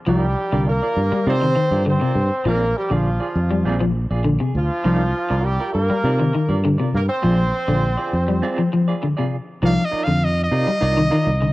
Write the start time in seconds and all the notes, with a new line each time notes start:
0.06 C2 F3 D#4 F4 G4 A#4 D5
0.11 G3
0.52 C2 D3 F4 A#4 D5
0.69 A#3 A#4
0.82 F4 A#4 D5
0.96 G2
1.12 G3, muted fingered electric bass stroke
1.26 C3 C4 D#4 F4 A#4 C5 D5
1.42 D#3
1.56 D#3
1.71 G2 F4 A#4 D5
1.86 D3 C4 C5
2.01 C3 F4 A#4 D5
2.15 G2
2.45 A#1 F3 A#3 C4 F4 G#4 A#4 D5
2.77 G3 G4
2.90 A#1 D3 F3 F4 G#4 D5
3.20 F4 G#4 D5
3.36 F2
3.51 G3
3.65 A#1 C4 F4 G#4 D5
3.80 F3
4.11 A#1 F4 G#4 D5
4.25 D3
4.40 C3 G#4, muted clean electric guitar stroke
4.55 D2 F3 F4
4.84 C2 F3 D#4 F4 A#4 D5
5.30 C2 F4 A#4 D5, muted clean electric guitar stroke
5.44 G3 G4
5.60 F4 A#4 D5
5.73 G2 A#3 A#4
5.90 G3, muted fingered electric bass stroke
6.04 C3 D#4 F4 A#4 D5
6.20 D#3
6.35 D#3
6.49 G2 F4 A#4 D5
6.65 D3
6.78 C3 F4 A#4 D5
6.94 G2 A#3 A#4
7.09 C4 C5
7.22 A#1 F3 C4 F4 G#4 D5
7.68 A#1 D3 F4 G#4 D5
7.98 F4 G#4 D5
8.13 F2
8.28 G3
8.42 C4 F4 G#4 D5
8.58 F3
8.73 F3
8.88 F4 G#4 D5
9.03 D3
9.17 C3 F4 G#4 D5
9.62 C2 F3 D#4 F4 A#4 D5 F5
9.85 D#5
9.91 D#4 F4 A#4 D5, muted fingered electric bass stroke
10.04 F2 D3 F5
10.24 D#5
10.44 D#5
10.51 C3 D#4 F4 A#4 D5
10.67 G3, muted fingered electric bass stroke
10.81 C2 D#4 F4 A#4 D5
10.97 D#3
11.10 D#3 D#4 F4 A#4 D5
11.27 C2
11.42 D3